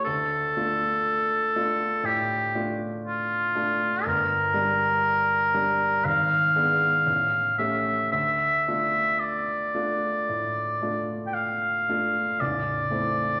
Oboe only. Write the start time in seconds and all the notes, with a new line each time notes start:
0.05 A4
2.06 G4
3.05 F4
4.05 A#4
6.05 F5
7.58 E5
8.12 E5
9.19 D5
11.27 G5
11.34 F5
12.40 D5